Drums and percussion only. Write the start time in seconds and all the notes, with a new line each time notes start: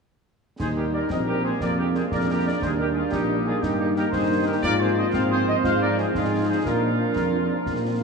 0.60 concert bass drum, snare, crash
1.10 concert bass drum, snare
1.61 concert bass drum, snare
1.95 snare
2.12 concert bass drum, snare
2.62 concert bass drum, snare
3.12 concert bass drum, snare
3.63 concert bass drum, snare
3.96 snare
4.13 concert bass drum, snare
4.63 concert bass drum, snare, crash
5.13 concert bass drum, snare
5.64 concert bass drum, snare
5.98 snare
6.15 concert bass drum, snare
6.66 concert bass drum, snare
7.16 concert bass drum, snare
7.66 concert bass drum, snare